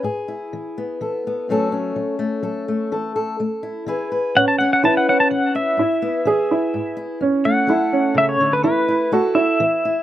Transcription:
<<
  \new Staff \with { instrumentName = "Pedal steel guitar" } { \time 3/4 \key e \mixolydian \tempo 4 = 126 r2. | r2. | r2. | fis''16 a''16 fis''16 fis''16 a''16 fis''16 fis''16 a''16 fis''8 e''8~ |
e''2~ e''8 r8 | r8 fis''4. e''16 cis''8 b'16 | b'4 r8 e''4. | }
  \new Staff \with { instrumentName = "Upright piano" } { \time 3/4 \key e \mixolydian r2. | r2. | r2. | cis'4 e'8 cis'4 r8 |
e'4 gis'8 e'4 r8 | cis'4 e'8 cis'4 r8 | e'4 fis'8 e'4 r8 | }
  \new Staff \with { instrumentName = "Steel-string acoustic guitar" } { \time 3/4 \key e \mixolydian << { gis'8 e'4 b8 a'8 b8 | <fis a cis' a'>8 cis'4 a8 a'8 a8 | a'8 a'4 e'8 <e' gis' b'>8 b'8 | r8 cis'8 b'4. e'8 |
r8 b8 gis'4. e'8 | r8 a8 a'2 | r8 e'8 a'4 r8 e'8 | } \\ { gis,4 e4 e4 | fis,4 fis4 fis4 | e4 a4 e4 | a,4 e4 e4 |
gis,4 e4 gis,4 | fis,4 fis4 cis8 d8 | e4 a4 e4 | } >> }
>>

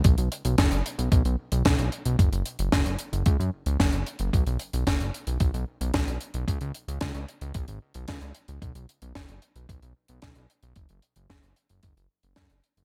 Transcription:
<<
  \new Staff \with { instrumentName = "Analog synth bass" } { \clef bass \time 4/4 \key b \lydian \tempo 4 = 112 b,,16 b,,16 r16 b,,16 fis,,16 fis,,16 r16 b,,16 b,,16 b,,16 r16 b,,16 b,,16 b,,16 r16 b,,16 | fis,,16 fis,,16 r16 fis,,16 fis,,16 fis,,16 r16 fis,,16 cis,16 fis,16 r16 cis,16 fis,,16 fis,,16 r16 fis,,16 | b,,16 b,,16 r16 b,,16 fis,,16 fis,,16 r16 b,,16 b,,16 b,,16 r16 b,,16 b,,16 b,,16 r16 b,,16 | cis,16 cis,16 r16 cis,16 cis,16 cis,16 r16 cis,16 b,,16 gis,,16 r16 b,,16 cis,16 cis,16 r16 cis,16 |
b,,16 b,,16 r16 b,,16 fis,,16 fis,,16 r16 b,,16 b,,16 b,,16 r16 b,,16 b,,16 b,,16 r16 b,,16 | fis,,16 fis,,16 r16 fis,,16 fis,,16 fis,,16 r16 fis,,16 fis,,16 fis,,16 r16 fis,,16 fis,16 fis,,16 r16 fis,,16 | }
  \new DrumStaff \with { instrumentName = "Drums" } \drummode { \time 4/4 <hh bd>16 hh16 hh16 hh16 <hh bd sn>16 hh16 hh16 hh16 <hh bd>16 hh8 hh16 <hh bd sn>16 hh16 hh16 hh16 | <hh bd>16 hh16 hh16 hh16 <hh bd sn>16 hh16 hh16 hh16 <hh bd>16 hh8 hh16 <hh bd sn>16 hh16 hh16 hh16 | <hh bd>16 hh16 hh16 hh16 <hh bd sn>16 hh16 hh16 hh16 <hh bd>16 hh8 hh16 <hh bd sn>16 hh16 hh16 hh16 | <hh bd>16 hh16 hh16 hh16 <hh bd sn>16 hh16 hh16 hh16 <hh bd>16 hh8 hh16 <hh bd sn>16 hh16 hh16 hh16 |
<hh bd>16 hh16 hh16 hh16 <hh bd sn>16 hh16 hh16 hh16 <hh bd>16 hh8 hh16 <hh bd sn>16 hh16 hh16 hh16 | <hh bd>16 hh16 hh16 hh16 <hh bd sn>16 hh16 hh16 hh16 <hh bd>16 hh8 hh16 <hh bd sn>16 hh16 hh16 hh16 | }
>>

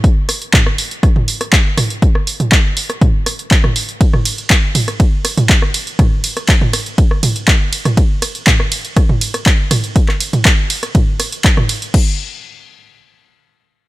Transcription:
\new DrumStaff \with { instrumentName = "Drums" } \drummode { \time 4/4 \tempo 4 = 121 <hh bd>8 <hho ss>16 hh16 <hc hh bd toml>16 ss16 hho16 hh16 <hh bd ss>16 toml16 hho16 <hh ss>16 <hc hh bd>8 <hho ss toml>16 hh16 | <hh bd>16 ss16 hho16 <hh toml>16 <hc hh bd ss>8 hho16 <hh ss>16 <hh bd toml>8 <hho ss>16 hh16 <hc hh bd>16 <ss toml>16 hho16 hh16 | <hh bd cymr>16 <ss toml>16 <hho cymr>16 hh16 <hc hh bd cymr ss>8 <hho cymr toml>16 <hh ss>16 <hh bd cymr>8 <hho cymr ss>16 <hh toml>16 <hc hh bd cymr>16 ss16 <hho cymr>16 hh16 | <hh bd cymr ss toml>8 <hho cymr>16 <hh ss>16 <hc hh bd cymr>16 toml16 <hho cymr ss>16 hh16 <hh bd cymr>16 ss16 <hho cymr toml>16 hh16 <hc hh bd cymr ss>8 <hho cymr>16 <hh ss toml>16 |
<hh bd cymr>8 <hho cymr ss>16 hh16 <hc hh bd cymr toml>16 ss16 <hho cymr>16 hh16 <hh bd cymr ss>16 toml16 <hho cymr>16 <hh ss>16 <hc hh bd cymr>8 <hho cymr ss toml>16 hh16 | <hh bd cymr>16 <hc ss>16 <hho cymr>16 <hh toml>16 <hc hh bd cymr ss>8 <hho cymr>16 <hh ss>16 <hh bd cymr toml>8 <hho cymr ss>16 hh16 <hc hh bd cymr>16 <ss toml>16 <hho cymr>16 hh16 | <cymc bd>4 r4 r4 r4 | }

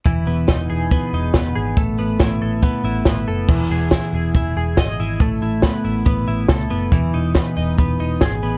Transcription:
<<
  \new Staff \with { instrumentName = "Clean electric guitar" } { \time 4/4 \key e \major \tempo 4 = 140 e8 b8 dis'8 gis'8 b8 dis'8 b8 gis'8 | a8 b8 e'8 a'8 b8 e'8 b8 a'8 | e8 gis'8 e'8 gis'8 e'8 gis'8 dis''8 e'8 | a8 e'8 b8 e'8 b8 e'8 a'8 b8 |
e8 dis'8 b8 dis'8 b8 dis'8 gis'8 b8 | }
  \new Staff \with { instrumentName = "Picked electric bass" } { \clef bass \time 4/4 \key e \major e,,8 e,,8 e,,8 e,,8. r16 e,,8 e,,8 gis,,8 | a,,8 a,,8 a,,8 a,,8. r16 a,,8 a,,8 fis,,8 | e,,8 e,,8. r16 e,,8 e,,8 e,,8 gis,,8 gis,,8 | a,,8 a,,8. r16 a,,8 a,,8 a,,8 cis,8 fis,,8 |
e,,8 e,,8. r16 e,,8 e,,8 e,,8 gis,,8 a,,8 | }
  \new DrumStaff \with { instrumentName = "Drums" } \drummode { \time 4/4 <hh bd>4 <hh bd sn>4 <hh bd>4 <hh bd sn>4 | <hh bd>4 <hh bd sn>4 <hh bd>4 <hh bd sn>4 | <cymc bd>4 <hh bd sn>4 <hh bd>4 <hh bd sn>4 | <hh bd>4 <hh bd sn>4 <hh bd>4 <hh bd sn>4 |
<hh bd>4 <hh bd sn>4 <hh bd>4 <hh bd sn>4 | }
>>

